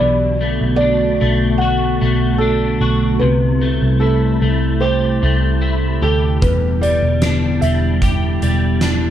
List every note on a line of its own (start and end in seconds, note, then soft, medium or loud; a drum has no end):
0.00 0.58 B1 medium
0.00 3.21 B2 medium
0.00 3.19 D3 medium
0.00 6.39 A3 medium
0.00 3.19 B3 medium
0.00 0.80 D4 soft
0.00 3.19 F#4 medium
0.00 0.75 D5 medium
0.41 1.21 A3 medium
0.61 1.19 B1 medium
0.76 1.62 D5 medium
0.81 2.40 D4 medium
1.21 1.98 B1 medium
1.21 2.01 A3 medium
1.58 2.80 F#4 medium
1.58 2.36 F#5 medium
2.01 2.78 B1 medium
2.01 3.61 A3 medium
2.38 3.29 D4 soft
2.38 3.16 A4 medium
2.81 3.19 B1 medium
2.81 3.30 F#4 medium
3.19 3.79 C2 medium
3.19 6.42 C3 medium
3.19 9.10 G3 medium
3.19 6.39 E4 medium
3.19 4.03 B4 medium
3.24 6.40 C3 medium
3.62 4.41 A3 soft
3.82 4.39 C2 medium
4.00 5.61 E4 medium
4.00 4.83 A4 medium
4.42 5.18 C2 medium
4.42 5.22 A3 medium
4.80 6.02 G4 medium
4.80 6.05 C5 medium
5.23 5.98 C2 medium
5.23 6.50 A3 medium
5.62 7.22 E4 medium
6.02 6.40 D2 medium
6.02 8.03 G4 medium
6.02 6.39 A4 medium
6.42 6.99 E1 medium
6.42 9.10 E2 medium
6.42 9.10 D3 medium
6.42 9.10 B3 medium
6.42 9.10 E4 medium
6.42 6.83 B4 medium
6.42 kick medium
6.42 closed hi-hat medium
6.81 7.62 G3 medium
6.81 7.64 D5 medium
6.81 closed hi-hat medium
7.03 7.59 E1 medium
7.22 8.82 D4 medium
7.22 snare loud
7.22 closed hi-hat medium
7.61 8.38 E1 loud
7.61 8.42 G3 medium
7.61 8.78 E5 medium
7.61 closed hi-hat soft
8.02 9.10 G4 medium
8.02 kick medium
8.02 closed hi-hat medium
8.42 9.10 E1 medium
8.42 9.10 G3 soft
8.42 closed hi-hat soft
8.81 9.10 D4 soft
8.81 snare medium
8.81 closed hi-hat medium